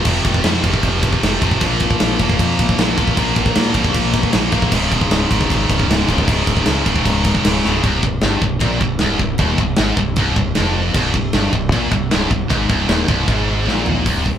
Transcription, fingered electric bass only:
0.05 0.20 F1 loud
0.25 0.40 F1 medium
0.45 0.59 F2 medium
0.64 0.79 F1 medium
0.84 1.13 F1 medium
1.23 1.37 F1 medium
1.42 1.56 F1 medium
1.62 1.76 A#1 loud
1.81 1.96 A#1 medium
2.02 2.16 A#1 medium
2.20 2.35 F1 loud
2.39 2.54 F2 loud
2.59 2.74 A#1 medium
2.79 2.93 A#1 loud
2.98 3.12 A#1 medium
3.17 3.32 A#1 medium
3.36 3.51 A#1 loud
3.58 3.72 A#2 medium
3.74 3.89 A#1 loud
3.95 4.24 A#1 loud
4.35 4.49 A#1 medium
4.53 4.67 A#1 medium
4.72 4.87 C#1 loud
4.92 5.06 C#1 medium
5.11 5.26 C#1 loud
5.31 5.46 G#1 medium
5.50 5.65 G#1 loud
5.69 5.84 C#1 medium
5.88 6.03 C#1 loud
6.09 6.23 C#1 loud
6.27 6.42 C#1 loud
6.47 6.62 C#1 medium
6.66 6.81 C#2 medium
6.86 7.01 C#1 loud
7.06 7.35 C#1 loud
7.45 7.60 C#1 loud
7.66 7.80 C#1 loud
7.84 8.02 C1 loud
8.03 8.21 C1 medium
8.23 8.41 G1 loud
8.42 8.60 C1 medium
8.61 8.80 A#1 loud
8.81 8.99 C1 medium
9.01 9.19 C1 medium
9.19 9.38 C1 medium
9.39 9.58 D#1 loud
9.59 9.77 C1 medium
9.79 9.96 G#1 medium
9.97 10.16 C1 medium
10.17 10.35 C1 loud
10.37 10.55 C1 medium
10.58 10.94 F1 loud
10.95 11.13 C1 loud
11.14 11.33 C1 medium
11.35 11.53 G1 loud
11.53 11.72 C1 medium
11.72 11.91 A#1 loud
11.92 12.11 C1 medium
12.14 12.30 C1 loud
12.30 12.49 C1 medium
12.50 12.69 G#1 medium
12.70 12.89 C1 medium
12.89 13.08 D#1 loud
13.09 13.27 C1 medium
13.28 13.65 G#1 medium
13.67 14.04 A#1 medium
14.06 14.25 C1 medium
14.26 14.38 C1 medium

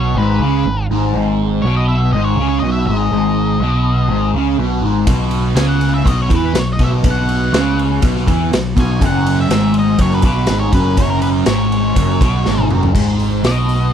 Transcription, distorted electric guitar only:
0.00 0.16 B2 loud
0.18 0.40 G#2 loud
0.42 0.65 C#3 loud
0.67 0.85 G#2 medium
0.91 1.14 G#2 loud
1.15 1.63 G#2 loud
1.65 2.12 B2 loud
2.14 2.37 G#2 loud
2.39 2.62 C#3 loud
2.64 2.86 B2 loud
2.89 3.11 G#2 medium
3.12 3.60 G#2 loud
3.62 4.09 B2 loud
4.10 4.33 G#2 loud
4.35 4.58 C#3 loud
4.59 4.83 B2 loud
4.82 5.06 G#2 loud
5.06 5.55 B2 loud
5.57 6.04 C#3 medium
6.04 6.29 B2 medium
6.30 6.53 E3 loud
6.54 6.74 B2 medium
6.79 7.02 B2 loud
7.03 7.52 B2 loud
7.53 8.02 C#3 loud
8.03 8.27 B2 loud
8.27 8.51 E3 loud
8.52 8.72 B2 medium
8.76 9.00 B2 loud
8.99 9.49 F#2 medium
9.50 9.99 G#2 loud
9.99 10.23 F#2 loud
10.23 10.48 B2 loud
10.49 10.73 G#2 loud
10.74 10.97 F#2 loud
10.99 11.46 F#2 loud
11.47 11.95 G#2 loud
11.97 12.21 F#2 loud
12.21 12.45 B2 loud
12.46 12.69 G#2 loud
12.70 12.94 F#2 loud
12.94 13.43 G#2 medium
13.43 13.92 B2 loud

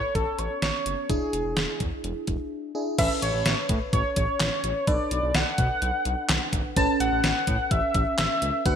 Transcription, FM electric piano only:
0.00 1.06 B3 medium
0.00 1.06 C#4 medium
0.00 1.06 A4 medium
1.10 2.72 D4 medium
1.10 2.72 E4 medium
1.10 2.72 G#4 medium
2.75 2.98 D4 medium
2.75 2.99 E4 medium
2.75 2.99 G#4 medium
2.98 4.84 C#4 medium
2.98 4.84 A4 medium
2.98 4.84 B4 medium
4.87 6.73 D4 medium
4.87 6.73 A4 medium
4.87 6.73 B4 medium
6.76 8.62 C#4 medium
6.76 8.62 A4 medium
6.76 8.62 B4 medium
8.66 8.76 D4 medium
8.66 8.76 F#4 medium
8.66 8.76 B4 medium

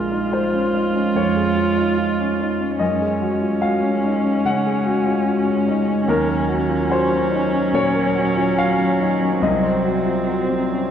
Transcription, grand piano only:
0.00 1.12 A#1 soft
0.00 0.24 F4 soft
0.00 1.36 G#4 soft
0.00 0.29 A#4 medium
0.11 0.32 D#4 soft
0.32 0.66 F4 soft
0.32 1.12 C5 medium
0.54 0.87 C#4 soft
0.74 0.95 D#4 soft
0.95 1.28 C#4 soft
1.15 1.48 F2 soft
1.15 2.76 C#5 medium
1.36 1.69 G#4 soft
1.57 1.90 F4 soft
1.77 1.98 D#4 soft
1.98 2.31 F4 soft
2.19 2.52 C#4 soft
2.40 2.60 D#4 soft
2.61 2.81 C#4 soft
2.79 4.41 F#2 soft
2.79 3.58 D#5 medium
3.01 3.34 G#4 soft
3.21 3.54 F#4 soft
3.42 3.62 F4 soft
3.62 3.95 F#4 soft
3.62 4.41 F5 medium
3.83 4.16 C#4 soft
4.04 4.24 D#4 soft
4.24 4.58 C#4 soft
4.45 4.78 C#3 soft
4.45 6.05 F#5 medium
4.66 4.99 G#4 soft
4.86 5.19 F#4 soft
5.06 5.27 F4 soft
5.26 5.59 F#4 soft
5.46 5.80 C#4 soft
5.68 5.88 D#4 soft
5.88 6.09 C#4 soft
6.08 7.69 D#2 medium
6.08 6.27 A#4 medium
6.28 6.62 A#4 soft
6.48 6.82 F#4 soft
6.69 6.90 F4 soft
6.90 7.23 F#4 soft
6.90 7.70 C5 medium
7.11 7.44 C#4 soft
7.31 7.52 D#4 soft
7.53 7.86 C#4 soft
7.73 8.07 A#2 soft
7.73 8.54 C#5 medium
7.95 8.28 A#4 soft
8.15 8.48 F#4 soft
8.36 8.57 F4 soft
8.57 8.91 F#4 soft
8.57 9.39 F5 medium
8.78 9.12 C#4 soft
8.99 9.20 D#4 soft
9.21 9.42 C#4 soft
9.42 10.91 C2 soft
9.42 10.91 D#5 medium
9.63 9.97 C5 soft
9.85 10.19 F#4 soft
10.06 10.28 F4 soft
10.28 10.63 F#4 soft
10.49 10.85 C4 soft
10.71 10.91 C#4 soft

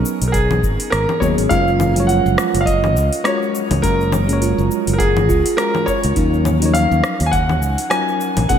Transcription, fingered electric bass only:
0.22 0.63 B1 medium
0.63 0.76 G#1 medium
0.93 1.05 G#1 medium
1.22 1.34 D#2 medium
1.38 1.48 G#1 medium
1.51 2.20 F#1 medium
2.26 2.35 F#1 medium
2.55 2.96 F#1 medium
2.96 3.09 C#2 medium
3.71 3.81 C#2 medium
3.84 4.53 F#1 loud
4.58 4.68 F#1 medium
4.88 5.30 F#1 medium
5.30 5.42 C#2 medium
6.04 6.14 C#2 medium
6.17 6.86 D#2 loud
6.91 7.01 D#2 medium
7.21 7.62 D#2 loud
7.62 7.75 C#2 medium
8.37 8.47 A#1 medium
8.50 8.59 B1 loud

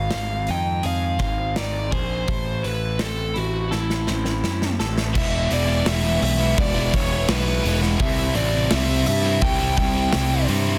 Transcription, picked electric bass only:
0.14 0.48 G#1 medium
0.49 0.83 F2 medium
0.84 1.19 F2 medium
1.20 1.55 G#1 medium
1.57 1.91 G#1 medium
1.93 2.27 A#1 medium
2.28 2.63 A1 medium
2.65 2.99 A1 medium
3.02 3.35 A1 medium
3.36 3.71 A1 medium
3.73 4.07 A1 medium
4.09 4.43 A1 medium
4.44 4.78 F#2 medium
4.80 5.14 A1 medium
5.16 5.47 E1 loud
5.51 5.82 E1 medium
5.86 6.18 E1 medium
6.22 6.53 B1 medium
6.58 6.89 E1 medium
6.94 7.25 E1 medium
7.28 7.60 B1 medium
7.64 7.96 E1 medium
8.00 8.32 C2 loud
8.35 8.67 A1 medium
8.72 9.03 C2 medium
9.08 9.39 G2 medium
9.42 9.74 C2 medium
9.78 10.09 C2 loud
10.15 10.46 C2 loud
10.49 10.79 G2 medium

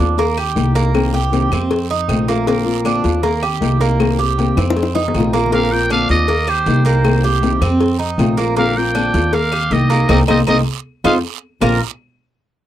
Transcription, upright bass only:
0.00 0.52 D#2 medium
0.56 1.46 C2 medium
1.51 2.05 F2 medium
2.08 2.98 A#1 medium
3.04 3.58 D#2 medium
3.61 4.51 C2 medium
4.57 5.10 F2 medium
5.14 6.04 A#1 medium
6.09 6.63 D#2 medium
6.66 7.56 C2 medium
7.61 8.15 F2 medium
8.18 9.08 A#1 medium
9.14 9.67 D#2 loud
9.71 10.06 C2 medium
10.09 10.23 C2 loud
10.29 10.43 C2 loud
10.47 10.61 C2 loud
11.04 11.19 F2 medium
11.61 11.79 A#1 loud

